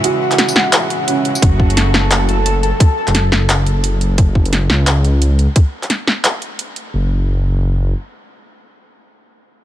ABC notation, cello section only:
X:1
M:4/4
L:1/8
Q:"Swing 16ths" 1/4=174
K:F#m
V:1 name="Cello section" clef=bass
[C,E,G,E]8 | [C,F,A,F]8 | z8 | z8 |
z8 | z8 | z8 |]